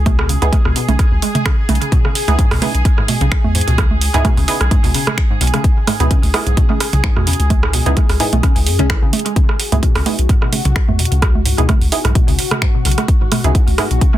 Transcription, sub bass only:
0, 0, Header, 1, 2, 480
1, 0, Start_track
1, 0, Key_signature, 4, "minor"
1, 0, Tempo, 465116
1, 63, Time_signature, 4, 2, 24, 8
1, 14633, End_track
2, 0, Start_track
2, 0, Title_t, "Sub bass"
2, 0, Program_c, 0, 38
2, 0, Note_on_c, 0, 37, 88
2, 382, Note_off_c, 0, 37, 0
2, 433, Note_on_c, 0, 37, 100
2, 516, Note_off_c, 0, 37, 0
2, 673, Note_on_c, 0, 37, 104
2, 756, Note_off_c, 0, 37, 0
2, 913, Note_on_c, 0, 35, 83
2, 996, Note_off_c, 0, 35, 0
2, 1154, Note_on_c, 0, 37, 93
2, 1236, Note_off_c, 0, 37, 0
2, 1743, Note_on_c, 0, 35, 95
2, 1842, Note_off_c, 0, 35, 0
2, 2353, Note_on_c, 0, 37, 103
2, 2436, Note_off_c, 0, 37, 0
2, 2594, Note_on_c, 0, 37, 108
2, 2676, Note_off_c, 0, 37, 0
2, 2834, Note_on_c, 0, 35, 85
2, 2916, Note_off_c, 0, 35, 0
2, 3314, Note_on_c, 0, 35, 87
2, 3396, Note_off_c, 0, 35, 0
2, 3554, Note_on_c, 0, 40, 94
2, 3730, Note_off_c, 0, 40, 0
2, 3795, Note_on_c, 0, 37, 85
2, 4223, Note_off_c, 0, 37, 0
2, 4274, Note_on_c, 0, 37, 101
2, 4356, Note_off_c, 0, 37, 0
2, 4514, Note_on_c, 0, 37, 103
2, 4596, Note_off_c, 0, 37, 0
2, 4753, Note_on_c, 0, 35, 84
2, 4836, Note_off_c, 0, 35, 0
2, 4993, Note_on_c, 0, 37, 93
2, 5076, Note_off_c, 0, 37, 0
2, 5582, Note_on_c, 0, 35, 97
2, 5681, Note_off_c, 0, 35, 0
2, 6193, Note_on_c, 0, 37, 102
2, 6276, Note_off_c, 0, 37, 0
2, 6433, Note_on_c, 0, 37, 106
2, 6516, Note_off_c, 0, 37, 0
2, 6673, Note_on_c, 0, 35, 86
2, 6755, Note_off_c, 0, 35, 0
2, 7153, Note_on_c, 0, 35, 90
2, 7236, Note_off_c, 0, 35, 0
2, 7393, Note_on_c, 0, 40, 92
2, 7569, Note_off_c, 0, 40, 0
2, 7633, Note_on_c, 0, 37, 82
2, 8062, Note_off_c, 0, 37, 0
2, 8113, Note_on_c, 0, 37, 100
2, 8196, Note_off_c, 0, 37, 0
2, 8354, Note_on_c, 0, 37, 102
2, 8436, Note_off_c, 0, 37, 0
2, 8594, Note_on_c, 0, 35, 85
2, 8676, Note_off_c, 0, 35, 0
2, 8833, Note_on_c, 0, 37, 93
2, 8943, Note_on_c, 0, 42, 87
2, 8958, Note_off_c, 0, 37, 0
2, 9074, Note_on_c, 0, 35, 86
2, 9089, Note_off_c, 0, 42, 0
2, 9250, Note_off_c, 0, 35, 0
2, 9313, Note_on_c, 0, 32, 99
2, 9396, Note_off_c, 0, 32, 0
2, 10033, Note_on_c, 0, 37, 98
2, 10116, Note_off_c, 0, 37, 0
2, 10274, Note_on_c, 0, 37, 104
2, 10356, Note_off_c, 0, 37, 0
2, 10513, Note_on_c, 0, 35, 82
2, 10596, Note_off_c, 0, 35, 0
2, 10993, Note_on_c, 0, 35, 89
2, 11076, Note_off_c, 0, 35, 0
2, 11233, Note_on_c, 0, 40, 98
2, 11409, Note_off_c, 0, 40, 0
2, 11473, Note_on_c, 0, 37, 90
2, 11902, Note_off_c, 0, 37, 0
2, 11953, Note_on_c, 0, 37, 100
2, 12036, Note_off_c, 0, 37, 0
2, 12192, Note_on_c, 0, 37, 108
2, 12276, Note_off_c, 0, 37, 0
2, 12433, Note_on_c, 0, 35, 87
2, 12516, Note_off_c, 0, 35, 0
2, 12673, Note_on_c, 0, 37, 96
2, 12756, Note_off_c, 0, 37, 0
2, 13262, Note_on_c, 0, 35, 96
2, 13361, Note_off_c, 0, 35, 0
2, 13873, Note_on_c, 0, 37, 100
2, 13956, Note_off_c, 0, 37, 0
2, 14113, Note_on_c, 0, 37, 109
2, 14196, Note_off_c, 0, 37, 0
2, 14353, Note_on_c, 0, 35, 86
2, 14436, Note_off_c, 0, 35, 0
2, 14633, End_track
0, 0, End_of_file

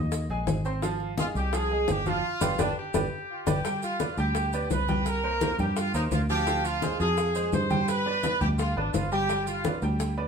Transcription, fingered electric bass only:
0, 0, Header, 1, 2, 480
1, 0, Start_track
1, 0, Tempo, 352941
1, 1122, Time_signature, 4, 2, 24, 8
1, 13978, End_track
2, 0, Start_track
2, 0, Title_t, "Fingered electric bass"
2, 0, Program_c, 0, 33
2, 0, Note_on_c, 0, 39, 91
2, 369, Note_off_c, 0, 39, 0
2, 400, Note_on_c, 0, 34, 68
2, 625, Note_off_c, 0, 34, 0
2, 636, Note_on_c, 0, 32, 96
2, 1760, Note_off_c, 0, 32, 0
2, 1837, Note_on_c, 0, 36, 90
2, 2509, Note_off_c, 0, 36, 0
2, 2559, Note_on_c, 0, 31, 98
2, 3006, Note_off_c, 0, 31, 0
2, 3280, Note_on_c, 0, 31, 95
2, 3459, Note_off_c, 0, 31, 0
2, 3520, Note_on_c, 0, 31, 88
2, 3699, Note_off_c, 0, 31, 0
2, 4000, Note_on_c, 0, 31, 103
2, 4179, Note_off_c, 0, 31, 0
2, 4717, Note_on_c, 0, 31, 91
2, 4897, Note_off_c, 0, 31, 0
2, 5676, Note_on_c, 0, 38, 90
2, 6348, Note_off_c, 0, 38, 0
2, 6397, Note_on_c, 0, 36, 86
2, 7521, Note_off_c, 0, 36, 0
2, 7598, Note_on_c, 0, 43, 95
2, 8046, Note_off_c, 0, 43, 0
2, 8075, Note_on_c, 0, 39, 66
2, 8301, Note_off_c, 0, 39, 0
2, 8314, Note_on_c, 0, 38, 92
2, 9440, Note_off_c, 0, 38, 0
2, 9516, Note_on_c, 0, 41, 90
2, 10189, Note_off_c, 0, 41, 0
2, 10235, Note_on_c, 0, 43, 96
2, 11360, Note_off_c, 0, 43, 0
2, 11437, Note_on_c, 0, 38, 81
2, 11886, Note_off_c, 0, 38, 0
2, 11913, Note_on_c, 0, 32, 66
2, 12140, Note_off_c, 0, 32, 0
2, 12157, Note_on_c, 0, 31, 89
2, 13280, Note_off_c, 0, 31, 0
2, 13357, Note_on_c, 0, 38, 95
2, 13978, Note_off_c, 0, 38, 0
2, 13978, End_track
0, 0, End_of_file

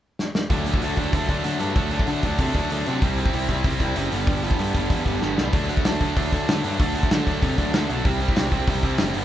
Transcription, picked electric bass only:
0, 0, Header, 1, 2, 480
1, 0, Start_track
1, 0, Tempo, 314465
1, 769, Time_signature, 4, 2, 24, 8
1, 14118, End_track
2, 0, Start_track
2, 0, Title_t, "Picked electric bass"
2, 0, Program_c, 0, 34
2, 770, Note_on_c, 0, 38, 88
2, 1119, Note_off_c, 0, 38, 0
2, 1245, Note_on_c, 0, 38, 82
2, 1421, Note_off_c, 0, 38, 0
2, 1491, Note_on_c, 0, 38, 83
2, 1665, Note_off_c, 0, 38, 0
2, 1725, Note_on_c, 0, 38, 82
2, 1901, Note_off_c, 0, 38, 0
2, 1965, Note_on_c, 0, 38, 82
2, 2141, Note_off_c, 0, 38, 0
2, 2211, Note_on_c, 0, 50, 88
2, 2385, Note_off_c, 0, 50, 0
2, 2443, Note_on_c, 0, 43, 83
2, 2620, Note_off_c, 0, 43, 0
2, 2686, Note_on_c, 0, 38, 86
2, 3037, Note_off_c, 0, 38, 0
2, 3165, Note_on_c, 0, 50, 89
2, 3342, Note_off_c, 0, 50, 0
2, 3413, Note_on_c, 0, 38, 84
2, 3587, Note_off_c, 0, 38, 0
2, 3643, Note_on_c, 0, 48, 86
2, 3820, Note_off_c, 0, 48, 0
2, 3885, Note_on_c, 0, 38, 89
2, 4062, Note_off_c, 0, 38, 0
2, 4134, Note_on_c, 0, 38, 93
2, 4308, Note_off_c, 0, 38, 0
2, 4387, Note_on_c, 0, 48, 87
2, 4556, Note_off_c, 0, 48, 0
2, 4610, Note_on_c, 0, 36, 92
2, 4960, Note_off_c, 0, 36, 0
2, 5102, Note_on_c, 0, 36, 86
2, 5273, Note_off_c, 0, 36, 0
2, 5327, Note_on_c, 0, 36, 92
2, 5504, Note_off_c, 0, 36, 0
2, 5560, Note_on_c, 0, 36, 87
2, 5740, Note_off_c, 0, 36, 0
2, 5803, Note_on_c, 0, 36, 83
2, 5982, Note_off_c, 0, 36, 0
2, 6050, Note_on_c, 0, 30, 91
2, 6226, Note_off_c, 0, 30, 0
2, 6299, Note_on_c, 0, 31, 86
2, 6472, Note_off_c, 0, 31, 0
2, 6525, Note_on_c, 0, 31, 88
2, 6878, Note_off_c, 0, 31, 0
2, 7016, Note_on_c, 0, 43, 84
2, 7191, Note_off_c, 0, 43, 0
2, 7245, Note_on_c, 0, 31, 85
2, 7424, Note_off_c, 0, 31, 0
2, 7478, Note_on_c, 0, 40, 85
2, 7659, Note_off_c, 0, 40, 0
2, 7717, Note_on_c, 0, 31, 82
2, 7899, Note_off_c, 0, 31, 0
2, 7980, Note_on_c, 0, 31, 87
2, 8153, Note_off_c, 0, 31, 0
2, 8217, Note_on_c, 0, 36, 84
2, 8391, Note_off_c, 0, 36, 0
2, 8446, Note_on_c, 0, 38, 87
2, 8799, Note_off_c, 0, 38, 0
2, 8931, Note_on_c, 0, 38, 82
2, 9108, Note_off_c, 0, 38, 0
2, 9170, Note_on_c, 0, 38, 89
2, 9347, Note_off_c, 0, 38, 0
2, 9415, Note_on_c, 0, 38, 91
2, 9590, Note_off_c, 0, 38, 0
2, 9650, Note_on_c, 0, 38, 84
2, 9827, Note_off_c, 0, 38, 0
2, 9904, Note_on_c, 0, 50, 89
2, 10076, Note_off_c, 0, 50, 0
2, 10146, Note_on_c, 0, 43, 81
2, 10317, Note_off_c, 0, 43, 0
2, 10378, Note_on_c, 0, 38, 86
2, 10726, Note_off_c, 0, 38, 0
2, 10870, Note_on_c, 0, 50, 83
2, 11039, Note_off_c, 0, 50, 0
2, 11093, Note_on_c, 0, 38, 89
2, 11269, Note_off_c, 0, 38, 0
2, 11335, Note_on_c, 0, 48, 87
2, 11510, Note_off_c, 0, 48, 0
2, 11572, Note_on_c, 0, 38, 83
2, 11748, Note_off_c, 0, 38, 0
2, 11809, Note_on_c, 0, 38, 91
2, 11986, Note_off_c, 0, 38, 0
2, 12059, Note_on_c, 0, 35, 88
2, 12232, Note_off_c, 0, 35, 0
2, 12292, Note_on_c, 0, 36, 89
2, 12641, Note_off_c, 0, 36, 0
2, 12771, Note_on_c, 0, 36, 86
2, 12946, Note_off_c, 0, 36, 0
2, 13000, Note_on_c, 0, 36, 91
2, 13179, Note_off_c, 0, 36, 0
2, 13243, Note_on_c, 0, 36, 89
2, 13420, Note_off_c, 0, 36, 0
2, 13477, Note_on_c, 0, 36, 83
2, 13656, Note_off_c, 0, 36, 0
2, 13734, Note_on_c, 0, 30, 93
2, 13907, Note_off_c, 0, 30, 0
2, 13968, Note_on_c, 0, 31, 85
2, 14118, Note_off_c, 0, 31, 0
2, 14118, End_track
0, 0, End_of_file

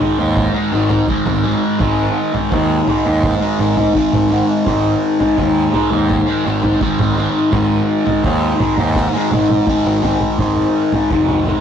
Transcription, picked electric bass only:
0, 0, Header, 1, 2, 480
1, 0, Start_track
1, 0, Tempo, 715990
1, 1210, Time_signature, 4, 2, 24, 8
1, 7780, End_track
2, 0, Start_track
2, 0, Title_t, "Picked electric bass"
2, 0, Program_c, 0, 34
2, 130, Note_on_c, 0, 39, 86
2, 314, Note_off_c, 0, 39, 0
2, 486, Note_on_c, 0, 32, 82
2, 671, Note_off_c, 0, 32, 0
2, 842, Note_on_c, 0, 32, 87
2, 1029, Note_off_c, 0, 32, 0
2, 1210, Note_on_c, 0, 32, 103
2, 1394, Note_off_c, 0, 32, 0
2, 1692, Note_on_c, 0, 39, 83
2, 1875, Note_off_c, 0, 39, 0
2, 2049, Note_on_c, 0, 39, 90
2, 2233, Note_off_c, 0, 39, 0
2, 2408, Note_on_c, 0, 32, 92
2, 2593, Note_off_c, 0, 32, 0
2, 2774, Note_on_c, 0, 32, 90
2, 2956, Note_off_c, 0, 32, 0
2, 3128, Note_on_c, 0, 32, 103
2, 3312, Note_off_c, 0, 32, 0
2, 3610, Note_on_c, 0, 39, 95
2, 3793, Note_off_c, 0, 39, 0
2, 3971, Note_on_c, 0, 39, 89
2, 4154, Note_off_c, 0, 39, 0
2, 4334, Note_on_c, 0, 32, 90
2, 4516, Note_off_c, 0, 32, 0
2, 4692, Note_on_c, 0, 32, 82
2, 4874, Note_off_c, 0, 32, 0
2, 5046, Note_on_c, 0, 32, 109
2, 5230, Note_off_c, 0, 32, 0
2, 5527, Note_on_c, 0, 39, 86
2, 5711, Note_off_c, 0, 39, 0
2, 5891, Note_on_c, 0, 39, 94
2, 6074, Note_off_c, 0, 39, 0
2, 6248, Note_on_c, 0, 32, 88
2, 6432, Note_off_c, 0, 32, 0
2, 6610, Note_on_c, 0, 32, 93
2, 6793, Note_off_c, 0, 32, 0
2, 6965, Note_on_c, 0, 32, 98
2, 7150, Note_off_c, 0, 32, 0
2, 7448, Note_on_c, 0, 29, 97
2, 7725, Note_off_c, 0, 29, 0
2, 7780, End_track
0, 0, End_of_file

